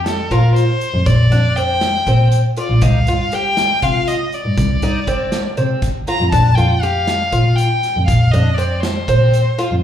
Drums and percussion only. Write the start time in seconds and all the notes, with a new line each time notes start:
0.06 snare, closed hi-hat
0.31 kick, closed hi-hat
0.56 snare, closed hi-hat
0.81 closed hi-hat
1.06 kick, closed hi-hat
1.32 snare, closed hi-hat
1.57 closed hi-hat
1.81 snare, closed hi-hat
2.07 kick, snare, closed hi-hat
2.32 closed hi-hat
2.57 closed hi-hat
2.81 kick, closed hi-hat
3.07 closed hi-hat
3.32 snare, closed hi-hat
3.57 snare, closed hi-hat
3.82 kick, closed hi-hat
4.08 snare, closed hi-hat
4.32 closed hi-hat
4.58 kick, closed hi-hat
4.82 closed hi-hat
5.07 kick, closed hi-hat
5.32 snare, closed hi-hat
5.57 closed hi-hat
5.82 kick, snare, closed hi-hat
6.07 closed hi-hat
6.32 kick, closed hi-hat
6.58 closed hi-hat
6.83 closed hi-hat
7.07 snare, closed hi-hat
7.32 kick, closed hi-hat
7.58 closed hi-hat
7.83 snare, closed hi-hat
8.08 kick, closed hi-hat
8.34 closed hi-hat
8.59 closed hi-hat
8.83 snare, closed hi-hat
9.08 kick, closed hi-hat
9.34 closed hi-hat
9.59 snare, closed hi-hat